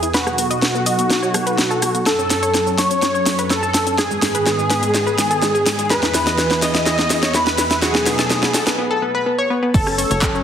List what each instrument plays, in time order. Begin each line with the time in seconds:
Already playing: analog synth pad E2 E3 B3 G#4
0.03 synth pluck E4, closed hi-hat, cabasa
0.14 analog synth pad B2 F#3 D#4 A4, analog synth lead F#4, synth pluck B4, snare, closed hi-hat, cabasa
0.27 synth pluck B3, cross-stick, cabasa
0.38 synth pluck B3, open hi-hat, cabasa
0.51 synth pluck D#5, closed hi-hat, cabasa
0.62 synth pluck B3, snare, closed hi-hat, cabasa
0.75 synth pluck B3, cabasa
0.86 synth pluck D#5, open hi-hat, cabasa
0.99 synth pluck B3, closed hi-hat, cabasa
1.10 synth pluck B3, snare, closed hi-hat, cabasa
1.23 synth pluck C#5, cabasa
1.34 synth pluck B3, cross-stick, open hi-hat, cabasa
1.47 synth pluck B4, closed hi-hat, cabasa
1.58 synth pluck B3, snare, closed hi-hat, cabasa
1.71 synth pluck A4, cabasa
1.82 synth pluck B3, cross-stick, open hi-hat, cabasa
1.95 synth pluck B3, closed hi-hat, cabasa
2.06 analog synth pad F#2 F#3 C#4, analog synth lead A4, synth pluck A4, snare, closed hi-hat, cabasa
2.19 synth pluck C#4, cabasa
2.30 synth pluck C#4, snare, open hi-hat, cabasa
2.43 synth pluck C#5, closed hi-hat, cabasa
2.54 synth pluck C#4, snare, closed hi-hat, cabasa
2.67 synth pluck C#4, cabasa
2.78 analog synth lead C#5, synth pluck C#5, snare, open hi-hat, cabasa
2.91 synth pluck C#4, closed hi-hat, cabasa
3.02 synth pluck C#4, snare, closed hi-hat, cabasa
3.15 synth pluck C#5, cabasa
3.26 synth pluck C#4, snare, open hi-hat, cabasa
3.39 synth pluck B4, closed hi-hat, cabasa
3.50 synth pluck C#4, analog synth lead A4, snare, closed hi-hat, cabasa
3.63 synth pluck A4, cabasa
3.74 synth pluck C#4, snare, open hi-hat, cabasa
3.87 synth pluck C#4, closed hi-hat, cabasa
3.98 analog synth pad G#2 D#3 B3 G#4, analog synth lead G#4, synth pluck G#4, snare, closed hi-hat, cabasa
4.11 synth pluck G#3, cabasa
4.22 synth pluck G#3, snare, open hi-hat, cabasa
4.35 synth pluck B4, closed hi-hat, cabasa
4.46 synth pluck G#3, snare, closed hi-hat, cabasa
4.59 synth pluck G#3, cabasa
4.70 synth pluck B4, snare, open hi-hat, cabasa
4.83 synth pluck G#3, closed hi-hat, cabasa
4.94 synth pluck G#3, snare, closed hi-hat, cabasa
5.07 synth pluck B4, cabasa
5.18 synth pluck G#3, snare, open hi-hat, cabasa
5.31 synth pluck A4, closed hi-hat, cabasa
5.42 synth pluck G#3, snare, closed hi-hat, cabasa
5.55 synth pluck G#4, cabasa
5.66 synth pluck G#3, snare, open hi-hat, cabasa
5.79 synth pluck G#3, closed hi-hat, cabasa
5.90 analog synth pad E2 E3 B3, synth pluck B4, analog synth lead B4, snare, closed hi-hat, cabasa
6.03 synth pluck E4, snare, cabasa
6.14 synth pluck E4, snare, open hi-hat, cabasa
6.27 synth pluck D#5, snare, closed hi-hat, cabasa
6.38 synth pluck E4, snare, closed hi-hat, cabasa
6.51 synth pluck E4, snare, cabasa
6.62 synth pluck D#5, analog synth lead D#5, snare, open hi-hat, cabasa
6.75 synth pluck E4, snare, closed hi-hat, cabasa
6.86 synth pluck E4, snare, closed hi-hat, cabasa
6.99 synth pluck D#5, snare, cabasa
7.10 synth pluck E4, snare, open hi-hat, cabasa
7.23 synth pluck C#5, snare, closed hi-hat, cabasa
7.34 synth pluck E4, analog synth lead B4, snare, closed hi-hat, cabasa
7.47 synth pluck B4, snare, cabasa
7.58 synth pluck E4, snare, open hi-hat, cabasa
7.71 synth pluck E4, snare, closed hi-hat, cabasa
7.82 analog synth pad B2 F#3 A3 D#4, synth pluck F#4, analog synth lead G#4, snare, closed hi-hat, cabasa
7.95 synth pluck B3, snare, cabasa
8.06 synth pluck B3, snare, open hi-hat, cabasa
8.19 synth pluck A4, snare, closed hi-hat, cabasa
8.30 synth pluck B3, snare, closed hi-hat, cabasa
8.43 synth pluck B3, snare, cabasa
8.54 synth pluck A4, snare, open hi-hat, cabasa
8.67 synth pluck B3, snare, closed hi-hat, cabasa
8.78 synth pluck B3
8.91 synth pluck A4
9.02 synth pluck B3
9.15 synth pluck B4
9.26 synth pluck B3
9.38 synth pluck C#5
9.50 synth pluck B3
9.63 synth pluck B3
9.74 analog synth bass F#1, analog synth pad F#3 A3 C#4, synth pluck A4, analog synth lead A4, kick, closed hi-hat, crash, cabasa
9.87 synth pluck C#4, cross-stick, cabasa
9.98 synth pluck C#4, open hi-hat, cabasa
10.11 analog synth bass F#1, synth pluck C#5, closed hi-hat, cabasa
10.22 synth pluck C#4, kick, clap, closed hi-hat, cabasa
10.35 synth pluck C#4, cabasa